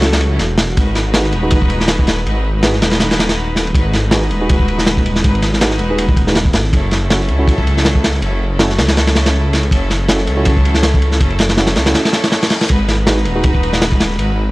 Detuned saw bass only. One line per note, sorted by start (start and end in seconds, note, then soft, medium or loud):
0.00 0.39 C#2 loud
0.40 0.76 E1 medium
0.77 1.34 G#1 loud
1.33 2.25 D#1 loud
2.26 2.84 G#1 loud
2.82 3.74 D#1 loud
3.75 4.32 G#1 loud
4.31 5.23 D#1 loud
5.24 5.82 G#1 loud
5.80 6.56 D#1 loud
6.55 6.72 G#1 medium
6.73 7.30 F#1 loud
7.29 8.21 C#2 loud
8.22 8.80 F#1 loud
8.78 9.70 C#2 loud
9.71 10.29 F#1 loud
10.27 11.19 C#2 loud
11.21 11.78 F#1 loud
11.76 11.95 C#2 loud
12.70 13.27 G#1 loud
13.25 14.17 D#1 loud
14.19 14.52 G#1 loud